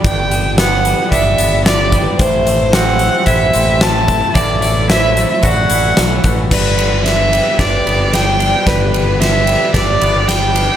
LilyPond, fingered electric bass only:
\new Staff \with { instrumentName = "Fingered electric bass" } { \clef bass \time 4/4 \key g \major \tempo 4 = 112 g,,2 g,,8 g,,4. | a,,2 a,,8 a,,4. | a,,2 a,,8 a,,8 b,,8 a,,8 | g,,2 g,,8 g,,4. |
g,,2 g,,8 g,,4. | }